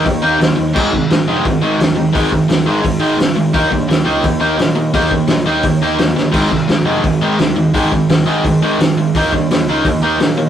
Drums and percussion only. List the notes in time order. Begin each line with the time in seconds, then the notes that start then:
0.06 kick, open hi-hat
0.41 snare, open hi-hat
0.76 kick, crash
0.93 kick
1.10 snare, open hi-hat
1.45 kick, open hi-hat
1.80 snare, open hi-hat
2.15 kick, open hi-hat
2.32 kick
2.49 snare, open hi-hat
2.85 kick, open hi-hat
3.20 snare, open hi-hat
3.54 kick, open hi-hat
3.72 kick
3.90 snare, open hi-hat
4.24 kick, open hi-hat
4.59 snare, open hi-hat
4.94 kick, open hi-hat
5.11 kick
5.27 snare, open hi-hat
5.63 kick, open hi-hat
5.99 snare, open hi-hat
6.17 snare
6.34 kick, open hi-hat, crash
6.51 kick
6.69 snare, open hi-hat
7.04 kick, open hi-hat
7.39 snare, open hi-hat
7.74 kick, open hi-hat
7.92 kick
8.09 snare, open hi-hat
8.45 kick, open hi-hat
8.80 snare, open hi-hat
9.15 kick, open hi-hat
9.33 kick
9.51 snare, open hi-hat
9.85 kick, open hi-hat
10.20 snare, open hi-hat